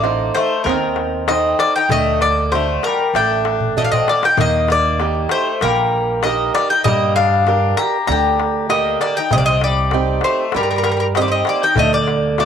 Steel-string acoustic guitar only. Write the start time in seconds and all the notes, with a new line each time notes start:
0.03 D#4 A4 C5
0.67 C4
1.29 D#4 A4 C5
1.91 D3
2.53 D4 F#4
3.16 A3
3.77 D4 F#4 A4
4.38 D#3
5.00 D#4 G4
5.64 A#3
6.24 D#4 G4 A#4
6.85 G3
7.47 D4 G4 A#4
8.08 D3
8.69 D3 G4 A#4
9.31 C3
9.93 C4 D#4 G4
10.54 G3
11.16 C4 D#4 G4
11.77 D3
12.38 A3 D4 F#4